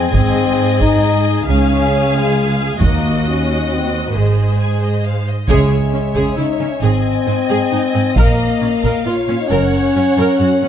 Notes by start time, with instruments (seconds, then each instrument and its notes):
Already playing: cello section F2, french horn section C4, viola section G#4, violin section G#5
0.12 double bass section G#1, cello section G#2, french horn section C4, violin section D#5, taiko
0.81 french horn section D#4, taiko
1.48 double bass section C#2, cello section C#2, french horn section C#4, viola section G#4, violin section F5 G#5
2.16 french horn section G#3
2.80 double bass section D#2, cello section D#2, french horn section A#3, viola section F#4, violin section D#5, taiko
3.27 french horn section C#4
3.72 french horn section C4
4.07 french horn section A#3
4.15 double bass section G#1, cello section G#2, french horn section G#3, viola section G#4, violin section C5
4.59 violin section G#5
4.83 violin section D#5
5.05 violin section F5
5.29 violin section D#5
5.48 double bass section C#2, cello section C#3, french horn section G#3, viola section G#4, violin section C#5 E5, taiko
5.93 cello section C#3, viola section C#4
6.15 cello section C#3, viola section G#4, taiko
6.36 cello section C#3, french horn section D#4, viola section E4
6.59 cello section C#3, viola section C#4
6.70 french horn section C#4
6.81 double bass section G#1, cello section G#2, french horn section C4, viola section G#4, violin section D#5 G#5
7.27 cello section G#2, viola section C4
7.50 cello section G#2, viola section G#4
7.72 cello section G#2, viola section D#4
7.94 cello section G#2, viola section C4
8.16 double bass section A#1, cello section A#2, french horn section A#3, viola section A#4, violin section F5, taiko
8.61 cello section A#2, viola section C#4
8.83 cello section A#2, viola section A#4, taiko
9.06 cello section A#2, viola section F4, french horn section F4, violin section C#5
9.28 cello section A#2, viola section C#4
9.41 french horn section D#4
9.48 double bass section F#1, cello section F#2, french horn section C#4, viola section A#4, violin section F#5
9.95 cello section F#2, viola section C#4
10.18 cello section F#2, viola section A#4
10.40 cello section F#2, viola section F#4
10.62 cello section F#2, viola section C#4